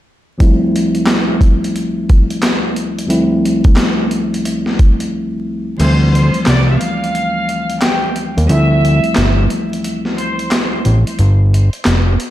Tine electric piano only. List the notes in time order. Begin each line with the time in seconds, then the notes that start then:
0.38 D2 F3 G3 A3 C4
0.42 E4
3.06 D2 F3 G3 A3 C4
3.10 E4
5.77 D2 F3 G3 A3 C4
5.81 E3
8.45 D2 F3 G3 A3 C4
8.50 E4